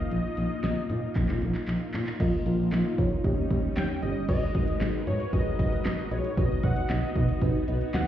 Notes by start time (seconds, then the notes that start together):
Already playing: A#3 D#4 F4 D#5
0.11 A#1 D#5, closed hi-hat
0.37 A#1, closed hi-hat
0.64 A#1, snare, closed hi-hat
0.90 A#2, closed hi-hat
1.15 A#1, kick, clap, closed hi-hat
1.29 A#2, clap
1.42 A#1, closed hi-hat
1.55 clap
1.68 A#1, clap, closed hi-hat
1.94 A#2, clap, open hi-hat
2.07 clap
2.20 A#1 A#3 D#4 F4 A#4 D#5, kick, closed hi-hat, crash
2.46 A#1 F4 A#4 D#5, closed hi-hat
2.59 A#1
2.72 A#1 F4 A#4 D#5, snare, clap, closed hi-hat
2.98 A#1 F4 A#4 C#5, kick, closed hi-hat
3.24 D#2 G3 C#4 G4 C#5 D#5, kick, closed hi-hat
3.51 D#2 G4 C#5 D#5, kick, closed hi-hat
3.76 D#2 G4 C#5 D#5 G5, snare, clap, closed hi-hat
4.02 G1 G4 C#5 D#5, closed hi-hat
4.29 G#1 G#3 D#4 F#4 G#4 A#4 B4 D#5, kick, closed hi-hat, crash
4.55 G#1 F#4 G#4 B4 D#5, kick, closed hi-hat
4.68 closed hi-hat
4.81 G#1 F#4 G#4 B4 D#5, snare, clap, closed hi-hat
5.07 G#2 F#4 G#4 B4 C#5 D#5, closed hi-hat
5.20 closed hi-hat
5.33 G#1 F#4 G#4 B4 D#5, kick, closed hi-hat
5.59 G#1 F#4 G#4 B4 D#5, kick, closed hi-hat
5.72 closed hi-hat
5.85 G#1 F#4 G#4 B4 D#5, snare, clap, closed hi-hat
6.11 A#1 F#4 G#4 B4 C#5 D#5, closed hi-hat
6.24 closed hi-hat
6.37 B1 B3 D#4 F#4 B4 D#5, kick, closed hi-hat
6.63 B1 D#4 F#4 B4 C#5 F#5, kick, closed hi-hat
6.76 closed hi-hat
6.89 B1 D#4 F#4 B4 D#5, snare, clap, closed hi-hat
7.16 B2 D#4 F#4 B4 D#5, kick, closed hi-hat
7.29 closed hi-hat
7.42 B1 D#4 F#4 B4 D#5, kick, closed hi-hat
7.68 B1 D#4 F#4 B4 D#5, closed hi-hat
7.81 closed hi-hat
7.94 D#2 D#4 F#4 B4 D#5 F#5, snare, clap, closed hi-hat